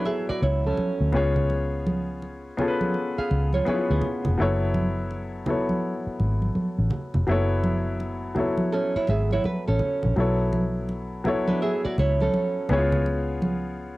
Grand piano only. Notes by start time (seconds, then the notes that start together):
Already playing: F#3 B3 E4 A4 C#5
1.12 B3 C#4 F4 G#4 C#5
2.57 B3 C#4 F4 G#4 A4
2.68 B4
3.65 B3 C#4 E4 G#4
3.69 C#5
3.74 F4
4.38 F#3 B3 E4 A4 C#5
5.46 F#3 B3 E4 A4 C#5
7.27 F#3 B3 E4 A4
7.31 C#5
8.35 F#3 B3 E4 A4 C#5
10.16 F#3 B3 E4 A4 C#5
11.24 F#3 B3 E4 A4 C#5
12.69 B3 C#4 E4 G#4 C#5
12.77 F4